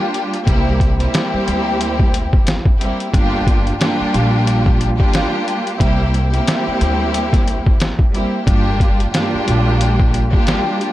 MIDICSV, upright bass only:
0, 0, Header, 1, 3, 480
1, 0, Start_track
1, 0, Tempo, 666667
1, 338, Time_signature, 4, 2, 24, 8
1, 7867, End_track
2, 0, Start_track
2, 0, Title_t, "Upright bass"
2, 0, Program_c, 0, 32
2, 341, Note_on_c, 0, 36, 105
2, 750, Note_off_c, 0, 36, 0
2, 1063, Note_on_c, 0, 38, 89
2, 1652, Note_off_c, 0, 38, 0
2, 2261, Note_on_c, 0, 31, 112
2, 2670, Note_off_c, 0, 31, 0
2, 2984, Note_on_c, 0, 34, 91
2, 3572, Note_off_c, 0, 34, 0
2, 4181, Note_on_c, 0, 36, 107
2, 4590, Note_off_c, 0, 36, 0
2, 4904, Note_on_c, 0, 38, 94
2, 5492, Note_off_c, 0, 38, 0
2, 6101, Note_on_c, 0, 31, 111
2, 6510, Note_off_c, 0, 31, 0
2, 6824, Note_on_c, 0, 34, 91
2, 7412, Note_off_c, 0, 34, 0
2, 7867, End_track
3, 0, Start_track
3, 0, Title_t, "Muted upright bass strokes"
3, 964, Note_on_c, 9, 29, 45
3, 1036, Note_off_c, 9, 29, 0
3, 2883, Note_on_c, 9, 29, 47
3, 2955, Note_off_c, 9, 29, 0
3, 4804, Note_on_c, 9, 29, 47
3, 4876, Note_off_c, 9, 29, 0
3, 6724, Note_on_c, 9, 29, 47
3, 6796, Note_off_c, 9, 29, 0
3, 7867, End_track
0, 0, End_of_file